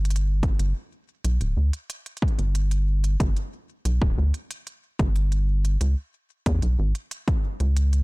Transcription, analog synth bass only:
0, 0, Header, 1, 2, 480
1, 0, Start_track
1, 0, Tempo, 652174
1, 436, Time_signature, 4, 2, 24, 8
1, 5912, End_track
2, 0, Start_track
2, 0, Title_t, "Analog synth bass"
2, 0, Program_c, 0, 38
2, 0, Note_on_c, 0, 31, 93
2, 407, Note_off_c, 0, 31, 0
2, 436, Note_on_c, 0, 31, 102
2, 538, Note_off_c, 0, 31, 0
2, 916, Note_on_c, 0, 35, 96
2, 1018, Note_off_c, 0, 35, 0
2, 1036, Note_on_c, 0, 26, 79
2, 1138, Note_off_c, 0, 26, 0
2, 1155, Note_on_c, 0, 38, 91
2, 1257, Note_off_c, 0, 38, 0
2, 1755, Note_on_c, 0, 31, 94
2, 2326, Note_off_c, 0, 31, 0
2, 2356, Note_on_c, 0, 31, 98
2, 2458, Note_off_c, 0, 31, 0
2, 2835, Note_on_c, 0, 35, 96
2, 2937, Note_off_c, 0, 35, 0
2, 2955, Note_on_c, 0, 26, 79
2, 3058, Note_off_c, 0, 26, 0
2, 3076, Note_on_c, 0, 38, 88
2, 3178, Note_off_c, 0, 38, 0
2, 3675, Note_on_c, 0, 31, 92
2, 4246, Note_off_c, 0, 31, 0
2, 4275, Note_on_c, 0, 37, 98
2, 4378, Note_off_c, 0, 37, 0
2, 4756, Note_on_c, 0, 40, 95
2, 4858, Note_off_c, 0, 40, 0
2, 4876, Note_on_c, 0, 35, 79
2, 4978, Note_off_c, 0, 35, 0
2, 4996, Note_on_c, 0, 32, 93
2, 5098, Note_off_c, 0, 32, 0
2, 5595, Note_on_c, 0, 37, 96
2, 5912, Note_off_c, 0, 37, 0
2, 5912, End_track
0, 0, End_of_file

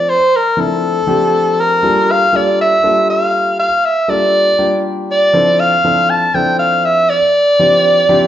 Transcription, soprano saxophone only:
0, 0, Header, 1, 2, 480
1, 0, Start_track
1, 0, Tempo, 501253
1, 69, Time_signature, 7, 3, 24, 8
1, 7920, End_track
2, 0, Start_track
2, 0, Title_t, "Soprano saxophone"
2, 0, Program_c, 0, 64
2, 0, Note_on_c, 0, 74, 77
2, 89, Note_on_c, 0, 72, 84
2, 103, Note_off_c, 0, 74, 0
2, 342, Note_on_c, 0, 70, 72
2, 356, Note_off_c, 0, 72, 0
2, 577, Note_on_c, 0, 69, 80
2, 592, Note_off_c, 0, 70, 0
2, 1536, Note_on_c, 0, 70, 91
2, 1550, Note_off_c, 0, 69, 0
2, 2024, Note_on_c, 0, 77, 81
2, 2039, Note_off_c, 0, 70, 0
2, 2260, Note_on_c, 0, 74, 83
2, 2274, Note_off_c, 0, 77, 0
2, 2485, Note_off_c, 0, 74, 0
2, 2502, Note_on_c, 0, 76, 90
2, 2934, Note_off_c, 0, 76, 0
2, 2968, Note_on_c, 0, 77, 78
2, 3407, Note_off_c, 0, 77, 0
2, 3441, Note_on_c, 0, 77, 78
2, 3686, Note_on_c, 0, 76, 74
2, 3700, Note_off_c, 0, 77, 0
2, 3923, Note_on_c, 0, 74, 76
2, 3937, Note_off_c, 0, 76, 0
2, 4618, Note_off_c, 0, 74, 0
2, 4895, Note_on_c, 0, 74, 89
2, 5359, Note_on_c, 0, 77, 92
2, 5374, Note_off_c, 0, 74, 0
2, 5842, Note_on_c, 0, 81, 80
2, 5857, Note_off_c, 0, 77, 0
2, 6078, Note_on_c, 0, 79, 82
2, 6092, Note_off_c, 0, 81, 0
2, 6305, Note_off_c, 0, 79, 0
2, 6311, Note_on_c, 0, 77, 78
2, 6557, Note_on_c, 0, 76, 91
2, 6571, Note_off_c, 0, 77, 0
2, 6795, Note_on_c, 0, 74, 103
2, 6809, Note_off_c, 0, 76, 0
2, 7920, Note_off_c, 0, 74, 0
2, 7920, End_track
0, 0, End_of_file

